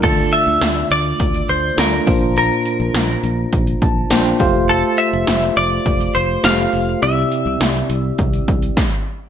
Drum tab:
CC |x---------------|----------------|----------------|----------------|
HH |x-x-x-x-xxx-x-o-|x-x-x-x-xxx-x-o-|x-x-x-x-xxx-x-o-|x-x-x-x-xxxx----|
SD |----o-------o---|----o-------o---|----o-------o---|----o-------o---|
BD |o-------o-----o-|--------o-o---o-|--------o-------|--------o-o-o---|